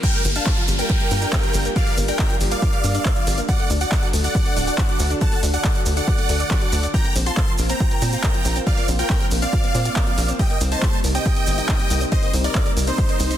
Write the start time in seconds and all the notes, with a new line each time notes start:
0.03 F3 G3 D4 F4 A#4 G5, kick, closed hi-hat, crash, downlifter, shaker
0.14 G3, closed hi-hat
0.25 G1 A#3, open hi-hat, shaker
0.35 D4 F5 A5, closed hi-hat, shaker
0.46 kick, clap, closed hi-hat, shaker
0.57 F3, closed hi-hat
0.68 G1 G3, open hi-hat, shaker
0.79 A#3 A#4 G5, closed hi-hat, shaker
0.88 F3, kick, closed hi-hat, shaker
1.00 G3, closed hi-hat
1.11 G2 A#3, open hi-hat, shaker
1.22 D4, closed hi-hat, shaker
1.33 F4, kick, clap, closed hi-hat, shaker
1.44 F3, closed hi-hat
1.54 G1 G3, open hi-hat, shaker
1.65 A#3, closed hi-hat, shaker
1.76 F3 D5 F5, kick, closed hi-hat, shaker
1.87 G3, open hi-hat
1.97 G1 A#3, open hi-hat, shaker
2.08 D4 A#4 G5, closed hi-hat, shaker
2.19 F4, kick, clap, closed hi-hat, shaker
2.30 F3, closed hi-hat
2.40 G1 G3, open hi-hat, shaker
2.51 A#3 D5 F5, closed hi-hat, shaker
2.62 F3, kick, closed hi-hat, shaker
2.73 G3, closed hi-hat
2.84 G2 A#3, open hi-hat, shaker
2.95 D4, closed hi-hat, shaker
3.05 kick, clap, closed hi-hat, shaker
3.16 F3, closed hi-hat
3.27 G1 G3, open hi-hat, shaker
3.37 A#3, closed hi-hat, shaker
3.49 D3 F#3 F#4 A4 D5 F#5, kick, closed hi-hat, shaker
3.59 A3, closed hi-hat
3.70 D2 D4, open hi-hat, shaker
3.81 F#4 D5 F#5, closed hi-hat, shaker
3.92 A4, kick, clap, closed hi-hat, shaker
4.03 F#3, closed hi-hat
4.13 D2 A3, open hi-hat, shaker
4.24 D4 D5 F#5, closed hi-hat, shaker
4.35 F#3, kick, closed hi-hat, shaker
4.46 A3, closed hi-hat
4.57 D1 D4, open hi-hat, shaker
4.67 F#4, closed hi-hat, shaker
4.78 A4, kick, clap, closed hi-hat, shaker
4.89 F#3, closed hi-hat
4.99 D2 A3, open hi-hat, shaker
5.10 D4, closed hi-hat, shaker
5.21 F#3 F#5 A5, kick, closed hi-hat, shaker
5.32 A3, open hi-hat
5.43 D2 D4, open hi-hat, shaker
5.54 F#4 D5 F#5, closed hi-hat, shaker
5.64 A4, kick, clap, closed hi-hat, shaker
5.75 F#3, closed hi-hat
5.86 D2 A3, open hi-hat, shaker
5.97 D4 D5 F#5, closed hi-hat, shaker
6.08 F#3, kick, closed hi-hat, shaker
6.18 A3, closed hi-hat
6.29 D2 A3, open hi-hat, shaker
6.40 D5, closed hi-hat, shaker
6.50 F#3, kick, clap, closed hi-hat, shaker
6.62 F#3, closed hi-hat
6.72 D2 A4, open hi-hat, shaker
6.83 D5, closed hi-hat, shaker
6.94 F3 A#3 C4 F4 G5 A#5, kick, closed hi-hat, shaker
7.05 A#3, closed hi-hat
7.15 A#1 C4, open hi-hat, shaker
7.26 F4 A5 C6, closed hi-hat, shaker
7.37 A#4, kick, clap, closed hi-hat, shaker
7.48 F3, closed hi-hat
7.58 A#1 A#3, open hi-hat, shaker
7.69 C4 G5 A#5, closed hi-hat, shaker
7.80 F3, kick, closed hi-hat, shaker
7.91 A#3, closed hi-hat
8.02 A#2 C4, open hi-hat, shaker
8.12 F4, closed hi-hat, shaker
8.23 A#4, kick, clap, closed hi-hat, shaker
8.34 F3, closed hi-hat
8.45 A#1 A#3, open hi-hat, shaker
8.56 C4, closed hi-hat, shaker
8.67 F3 D5 F5, kick, closed hi-hat, shaker
8.77 A#3, open hi-hat
8.88 A#1 C4, open hi-hat, shaker
8.99 F4 A#4 G5, closed hi-hat, shaker
9.10 kick, clap, closed hi-hat, shaker
9.21 F3, closed hi-hat
9.31 A#1 A#3, open hi-hat, shaker
9.42 C4 D5 F5, closed hi-hat, shaker
9.53 F3, kick, closed hi-hat, shaker
9.64 A#3, closed hi-hat
9.75 A#2 C4, open hi-hat, shaker
9.85 F4, closed hi-hat, shaker
9.96 A#4, kick, clap, closed hi-hat, shaker
10.07 F3, closed hi-hat
10.18 A#1 A#3, open hi-hat, shaker
10.29 C4, closed hi-hat, shaker
10.39 C3 G3 D#4 D#5 G5, kick, closed hi-hat, shaker
10.50 A#3, closed hi-hat
10.61 C2 C4, open hi-hat, shaker
10.72 D#4 C5 A5, closed hi-hat, shaker
10.82 G4, kick, clap, closed hi-hat, shaker
10.93 G3, closed hi-hat
11.04 C2 A#3, open hi-hat, shaker
11.15 C4 D#5 G5, closed hi-hat, shaker
11.25 G3, kick, closed hi-hat, shaker
11.36 A#3, closed hi-hat
11.46 G1 C4, open hi-hat, shaker
11.58 D#4, closed hi-hat, shaker
11.69 G4, kick, clap, closed hi-hat, shaker
11.80 G3, closed hi-hat
11.90 C2 A#3, open hi-hat, shaker
12.01 C4, closed hi-hat, shaker
12.12 G3 C5 D#5, kick, closed hi-hat, shaker
12.23 A#3, open hi-hat
12.34 C2 C4, open hi-hat, shaker
12.44 D#4 A#4 D5, closed hi-hat, shaker
12.55 G4, kick, clap, closed hi-hat, shaker
12.66 G3, closed hi-hat
12.77 C2 A#3, open hi-hat, shaker
12.87 C4 D#4 C5, closed hi-hat, shaker
12.98 G3, kick, closed hi-hat, shaker
13.09 A#3, closed hi-hat
13.20 C2 C4, open hi-hat, shaker
13.31 D#4, closed hi-hat, shaker